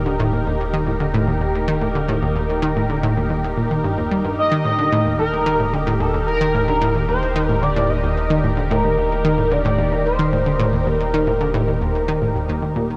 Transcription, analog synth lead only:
4.38 D#5
5.19 A#4
5.73 G4
6.00 A4
6.27 A#4
7.08 C5
7.48 A#4
7.62 D5
7.89 D#5
8.71 A#4
9.51 D5
10.06 C5
10.87 A#4

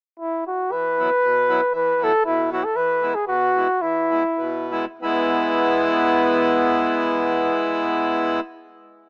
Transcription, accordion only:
0.70 E3
0.99 F#3 B3 E4
1.22 B2
1.49 F#3 B3 E4
1.73 E3
2.01 F#3 B3 E4
2.25 B2
2.52 F#3 B3 E4
2.75 E3
3.03 G#3 B3 E4
3.27 B2
3.56 G#3 B3 E4
3.81 E3
4.11 G#3 B3 E4
4.38 B2
4.72 G#3 B3 E4
5.02 G#3 B3 E4

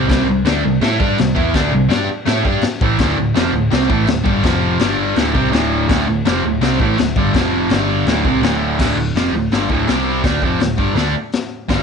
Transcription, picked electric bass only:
0.10 C2
0.28 C2
0.45 D2
0.64 C2
0.81 A2
1.01 G2
1.19 C2
1.36 E2
1.54 D2
1.71 C2
1.89 G2
2.08 muted picked electric bass stroke
2.27 A2
2.45 G2
2.63 muted picked electric bass stroke
2.81 A1
2.99 D1
3.16 D1
3.35 F1
3.53 D1
3.71 C2
3.90 A1
4.07 D1
4.26 G1
4.44 F1
4.79 G1
5.17 D1
5.35 C2
5.52 D1
5.90 D1
6.08 D1
6.26 F1
6.44 D1
6.61 C2
6.79 A1
6.98 D1
7.16 G1
7.34 F1
7.69 G1
8.06 D1
8.25 C2
8.41 D1
8.80 D1
8.95 D1
9.13 F1
9.31 D1
9.50 G1
9.69 D1
9.88 C2
10.24 D2
10.42 F1
10.60 D1
10.79 G1
10.94 D2
11.70 G1

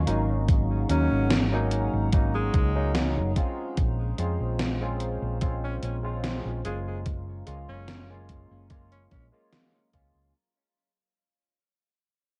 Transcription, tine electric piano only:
0.06 F#3 A#3 C#4 D#4
0.89 F#3 A#3 C#4 D#4
1.52 F#3 A#3 C#4 D#4
2.13 F#3 A#3 C#4 D#4
2.75 F#3 A#3 C#4 D#4
3.36 G#3 C4 C#4 F4
4.18 G#3 C4 C#4 F4
4.81 G#3 C4 C#4 F4
5.41 G#3 C4 C#4 F4
6.03 G#3 C4 C#4 F4
6.65 G#3 A#3 C#4 F4
7.46 G#3 A#3 C#4 F4
8.09 G#3 A#3 C#4 F4
8.70 G#3 A#3 C#4 F4
9.32 G#3 A#3 C#4 F4
9.93 G#3 A#3 C#4 F4

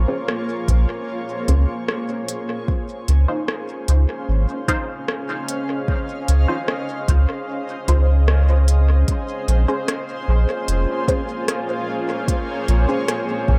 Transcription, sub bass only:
0.68 A#1
1.48 C#2
3.08 C#2
3.88 C#2
4.29 G#1
6.29 C#2
7.08 C#2
7.88 C#2
9.48 A#1
10.28 A#1
10.68 F1
12.68 A#1
13.48 A#1

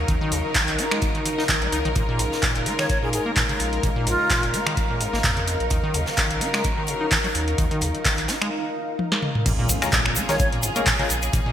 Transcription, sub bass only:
0.08 D#2
0.32 D#2
0.68 A#1
1.49 A#1
1.72 C#2
1.85 A#1
1.96 A#1
2.19 A#1
2.55 F1
3.60 A#1
3.83 A#1
4.07 A#1
4.43 F1
5.13 G#1
5.24 F2
5.60 A#1
5.71 D#2
5.94 D#2
6.30 A#1
7.35 D#2
7.58 D#2
7.82 D#2
8.18 A#1
9.46 A#1
9.69 A#1
10.06 F1
11.10 A#1
11.33 A#1

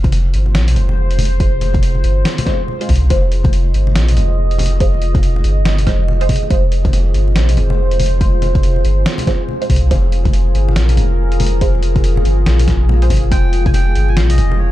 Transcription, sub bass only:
Already playing: F1
0.34 G1
0.55 A#1
0.76 F1
2.04 G1
2.89 C2
3.02 C2
3.10 F1
3.74 G1
3.95 A#1
4.17 F1
5.44 G1
5.87 F1
6.51 F1
7.14 G1
7.36 A#1
7.57 F1
8.85 G1
9.70 C2
9.83 C2
9.91 F1
10.55 G1
10.76 A#1
10.97 F1
12.25 G1
12.46 A#1
13.10 G#1
13.32 F1
13.96 G1
14.17 A#1
14.38 F1

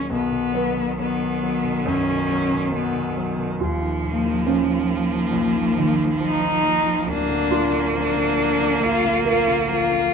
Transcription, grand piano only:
Already playing: A#2 F#3
0.10 B1 B2
0.32 B2
0.54 F#3
0.76 B2
0.99 F#3
1.22 B2
1.43 F#3
1.64 B2
1.85 F#2 F#3
2.08 B2
2.30 F#3
2.52 B2
2.72 F#3
2.96 B2
3.17 F#3
3.37 B2
3.60 D#1 D#2
3.82 D#3
4.04 A#2
4.25 D#3
4.46 F3
4.68 D#3
4.90 A#3
5.12 D#3
5.32 A#1 A#2
5.56 D#3
5.77 A#2
5.98 D#3
6.21 F3
6.41 D#3
6.63 A#3
6.84 D#3
7.06 D1
7.28 D3
7.49 A#2
7.71 D3
7.93 F3
8.14 D3
8.37 F3
8.60 D3
8.81 A#1 A#2
9.05 D3
9.25 A#2
9.48 D3
9.69 F3
9.91 D3

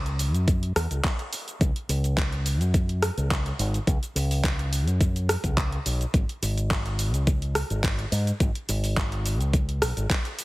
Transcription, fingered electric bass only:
Already playing: C#2
0.34 F#2
0.76 E2
0.91 C#2
1.61 C#2
1.89 C#2
2.61 F#2
3.17 C#2
3.59 G#1
3.87 C#2
4.15 C#2
4.87 F#2
5.44 C#2
5.86 B1
6.14 G#1
6.42 G#1
7.14 C#2
7.70 G#1
8.12 G#2
8.40 G#1
8.69 G#1
9.40 C#2
9.82 B1
9.97 G#1

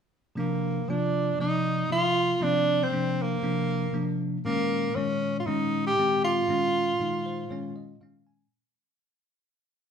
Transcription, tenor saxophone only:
0.38 A#3
0.89 D4
1.41 D#4
1.92 F4
2.43 D4
2.83 C4
3.22 A#3
4.45 A#3
4.95 C#4
5.40 F4
5.46 D#4
5.87 G4
6.24 F4

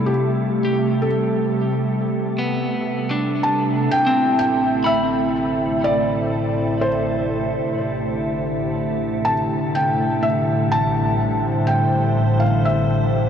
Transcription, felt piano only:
Already playing: E4
0.06 G4
1.02 A4
3.43 A5
3.91 G5
4.39 G5
4.86 E5
5.84 D5
6.81 C5
9.25 A5
9.75 G5
10.23 E5
10.72 A5
11.67 G5
12.40 F5
12.65 E5

